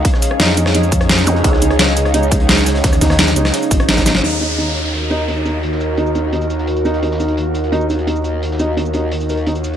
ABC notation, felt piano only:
X:1
M:4/4
L:1/8
Q:1/4=172
K:Ebm
V:1 name="Felt piano"
z2 E E E z2 E | E E z2 E E E z | z E E E z2 E E | E E E z2 E E E |
z2 E E E z2 E | E E z2 E E E z | z E E E z B E z |]